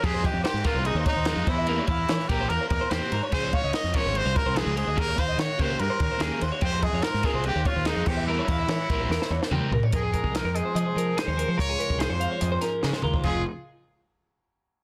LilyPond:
<<
  \new Staff \with { instrumentName = "Clean electric guitar" } { \time 4/4 \key f \minor \tempo 4 = 145 g'16 c''16 ees''16 des''16 c''8 bes'16 c''16 aes'16 c''16 des''16 c''16 aes'8 c''16 e''16 | bes'16 des''16 f''16 e''16 des''8 bes'16 c''16 bes'16 c''16 des''16 c''16 g'8 bes'16 des''16 | aes'16 des''16 f''16 ees''16 des''8 bes'16 c''16 aes'16 c''16 des''16 c''16 aes'8 c''16 ees''16 | aes'16 des''16 f''16 ees''16 des''8 bes'16 c''16 aes'16 c''16 des''16 c''16 aes'8 c''16 des''16 |
g'16 c''16 ees''16 des''16 c''8 bes'16 c''16 aes'16 c''16 des''16 c''16 aes'8 c''16 e''16 | bes'16 des''16 f''16 e''16 des''8 bes'16 c''16 bes'16 c''16 des''16 c''16 g'8 bes'16 des''16 | bes'16 aes'16 bes'8 aes'16 bes'16 ees''16 c''16 ees''16 c''16 bes'8 aes'16 c''16 bes'16 c''16 | bes'16 aes'16 bes'8 aes'16 c''16 f''16 des''16 ees''16 c''16 bes'8 aes'16 c''16 bes'16 c''16 |
f'8 r2. r8 | }
  \new Staff \with { instrumentName = "Trumpet" } { \time 4/4 \key f \minor aes'8 g'8 g'8 f'8 ees'8 ees'4 e'8~ | e'8 e'4 g'8 bes'8 bes'8 c''8. r16 | c''8 des''8 ees''8 des''8 c''8 bes'8 aes'8 aes'8 | bes'8 c''8 des''8 c''8 bes'4. r8 |
c''8 aes'8 bes'8 aes'8 g'8 f'8 ees'8 g'8 | e'2. r4 | aes'4 bes'8 aes'4. c''4 | des''4 c''4. r4. |
aes'8 r2. r8 | }
  \new Staff \with { instrumentName = "Overdriven electric guitar" } { \time 4/4 \key f \minor <f aes c' f'>8 r4 <f aes c' f'>8 r4 <f aes c' f'>8 r8 | <e bes c' g'>8 r4 <e bes c' g'>8 r4 <e bes c' g'>8 r8 | <f aes des' f'>8 r4 <f aes des' f'>8 r4 <f aes des' f'>8 r8 | <ees bes des' g'>8 r4 <ees bes des' g'>8 r4 <ees bes des' g'>8 r8 |
<f aes c' f'>8 r4 <f aes c' f'>8 r4 <f aes c' f'>8 r8 | <g c' g' bes'>8 r4 <g c' g' bes'>8 r4 <g c' g' bes'>8 r8 | r1 | r1 |
r1 | }
  \new Staff \with { instrumentName = "Clean electric guitar" } { \clef bass \time 4/4 \key f \minor << { r1 | r1 | r1 | r1 |
r1 | r1 | ees'8 aes4 aes4 ees'8 aes8 aes'8 | f'8 aes4 aes4 des'8 aes8 f'8 |
<f aes ees' aes'>8 r2. r8 | } \\ { r1 | r1 | r1 | r1 |
r1 | r1 | f,4 f4 c2 | des4 f4 aes,2 |
f,8 r2. r8 | } >> }
  \new Staff \with { instrumentName = "Fingered electric bass" } { \clef bass \time 4/4 \key f \minor f,8. f,16 r16 aes,16 r16 c,8 ees,16 r16 ees,8 f,16 e,8~ | e,8 e,8 e16 r16 bes,,8 e,16 r16 e,16 r16 e,16 r16 aes,16 r16 | des,8. des,16 r16 f,16 r16 aes,,8 c,16 r16 c,8 des,8 d,16 | ees,8 ees,8 ees16 r16 des,8 g,16 r16 ees,16 r16 ees,16 r16 ees,16 r16 |
f,8. f,16 r16 aes,16 r16 c,8 ees,16 r16 ees,8 f,16 e,8~ | e,8 e,8 e16 r16 bes,,8 e,16 r16 e,16 r16 e,16 r16 c,16 r16 | f,8. c,8 f,8 r16 f16 r16 f8 r16 ees,8 f16 | des,8 r16 c,8 f,8 r16 f,8 r8 des16 r16 ees,8 |
f,,8 r2. r8 | }
  \new DrumStaff \with { instrumentName = "Drums" } \drummode { \time 4/4 <bd cymr>8 <bd cymr>8 <cymr sn>16 sn16 <bd cymr sn>8 cymr8 <bd cymr>8 <cymr sn>8 <bd cymr>8 | cymr8 <bd cymr>8 <cymr sn>16 sn16 <bd cymr>8 cymr8 <bd cymr>8 <cymr sn>8 cymr8 | <cymc bd>8 <bd cymr>8 <cymr sn>16 sn16 <bd cymr sn>8 cymr8 <bd cymr>8 <cymr sn>8 cymr8 | <bd cymr>8 <bd cymr>8 <cymr sn>8 <bd cymr>8 cymr8 <bd cymr>8 <cymr sn>8 cymr8 |
<bd cymr>8 <bd cymr>8 <cymr sn>16 sn16 <bd cymr sn>8 cymr8 <bd cymr>8 <cymr sn>8 <cymc bd>8 | r8 <bd cymr>8 <cymr sn>8 <bd cymr>8 sn16 sn8 sn16 toml8 tomfh16 tomfh16 | <hh bd>8 <hh bd>16 bd16 <hh sn>8 hh8 hh8 hh8 <hh sn>8 hh8 | <hh bd>8 hh16 bd16 <hh sn>8 hh8 hh8 <hh sn>8 sn16 sn16 toml16 bd16 |
<cymc bd>4 r4 r4 r4 | }
>>